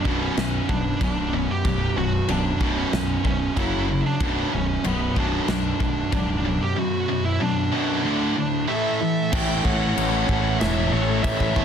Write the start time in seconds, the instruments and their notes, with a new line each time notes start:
Already playing: lead electric guitar D4
0.05 fingered electric bass B0, distorted electric guitar B1 F#2 B2, kick
0.22 lead electric guitar C#4
0.37 distorted electric guitar B1 F#2, fingered electric bass B1, overdriven electric guitar B2, snare, china
0.69 fingered electric bass B0, distorted electric guitar B1 F#2, overdriven electric guitar B2, lead electric guitar D4, kick
1.01 fingered electric bass B0, distorted electric guitar B1 F#2, overdriven electric guitar B2, lead electric guitar D4, kick, china
1.33 distorted electric guitar B1 F#2, overdriven electric guitar B2
1.39 lead electric guitar C#4
1.51 lead electric guitar G4
1.65 fingered electric bass B0, distorted electric guitar B1 F#2, overdriven electric guitar B2, kick, china
1.97 fingered electric bass B0, distorted electric guitar B1 F#2, overdriven electric guitar B2, lead electric guitar F#4
2.29 fingered electric bass B0, distorted electric guitar B1 F#2, overdriven electric guitar B2, lead electric guitar D4, china
2.61 fingered electric bass B0, distorted electric guitar B1 F#2 B2, kick
2.78 lead electric guitar C#4
2.93 distorted electric guitar B1 F#2, fingered electric bass B1, overdriven electric guitar B2, snare, china
3.25 fingered electric bass B0, distorted electric guitar B1 F#2, overdriven electric guitar B2, lead electric guitar C#4, kick
3.57 fingered electric bass F#1, distorted electric guitar F#2 C#3 F#3, lead electric guitar E4, kick, china
3.88 distorted electric guitar F#2 C#3, overdriven electric guitar F#3
4.06 lead electric guitar D4
4.20 fingered electric bass B0, distorted electric guitar B1 F#2 B2, kick, china
4.53 fingered electric bass B0, distorted electric guitar B1 F#2, overdriven electric guitar B2, lead electric guitar C#4
4.84 fingered electric bass B0, distorted electric guitar B1 F#2, overdriven electric guitar B2, lead electric guitar B3, china
5.16 fingered electric bass B0, distorted electric guitar B1 F#2 B2, lead electric guitar D4, kick
5.48 fingered electric bass B1, distorted electric guitar B1 F#2, overdriven electric guitar B2, snare, china
5.80 fingered electric bass B0, distorted electric guitar B1 F#2, overdriven electric guitar B2, kick
6.12 fingered electric bass C#1, distorted electric guitar B1 F#2, overdriven electric guitar B2, lead electric guitar D4, kick, china
6.44 distorted electric guitar B1 F#2, overdriven electric guitar B2
6.63 lead electric guitar G4
6.76 distorted electric guitar B1 F#2, overdriven electric guitar B2, lead electric guitar F#4
7.09 distorted electric guitar B1 F#2, overdriven electric guitar B2
7.25 lead electric guitar E4
7.40 distorted electric guitar B1 F#2, overdriven electric guitar B2, lead electric guitar D4
7.72 distorted electric guitar B1 F#2 B2
8.04 distorted electric guitar D2 A2 D3
8.36 distorted electric guitar D2 A2, overdriven electric guitar D3
8.68 distorted electric guitar A2 E3 A3, lead electric guitar A4 E5
9.01 distorted electric guitar A2 E3, overdriven electric guitar A3
9.32 fingered electric bass A1, distorted electric guitar A2 E3, overdriven electric guitar A3, lead electric guitar E5 G5, kick, crash
9.41 distorted electric guitar A2 E3
9.47 distorted electric guitar A2 E3
9.55 distorted electric guitar A2 E3
9.63 fingered electric bass A1, distorted electric guitar A2 E3, lead electric guitar C#5 F#5, kick
9.72 distorted electric guitar A2 E3
9.77 distorted electric guitar A2 E3
9.86 distorted electric guitar A2 E3
9.94 fingered electric bass A1, distorted electric guitar A2 E3, overdriven electric guitar A3, crash
10.01 distorted electric guitar A2 E3
10.10 distorted electric guitar A2 E3
10.18 distorted electric guitar A2 E3
10.25 fingered electric bass A1, distorted electric guitar A2 E3, kick
10.29 distorted electric guitar A2 E3, overdriven electric guitar A3
10.41 distorted electric guitar A2 E3
10.48 distorted electric guitar A2 E3
10.56 distorted electric guitar A2 E3
10.60 fingered electric bass E1, overdriven electric guitar A2 A3, lead electric guitar C#5 E5, snare, crash
10.65 distorted electric guitar A2 E3
10.72 distorted electric guitar A2 E3
10.79 distorted electric guitar A2 E3
10.87 distorted electric guitar A2 E3
10.92 fingered electric bass A1, distorted electric guitar A2 E3, lead electric guitar A4 C#5
11.01 distorted electric guitar A2 E3
11.09 distorted electric guitar A2 E3
11.17 distorted electric guitar A2 E3
11.23 fingered electric bass A1, distorted electric guitar A2 E3, overdriven electric guitar A3, lead electric guitar C#5 E5, kick, crash
11.32 distorted electric guitar A2 E3
11.40 distorted electric guitar A2 E3, kick
11.48 distorted electric guitar A2 E3
11.55 fingered electric bass E1, distorted electric guitar A2 E3, overdriven electric guitar A3, kick
11.59 distorted electric guitar A2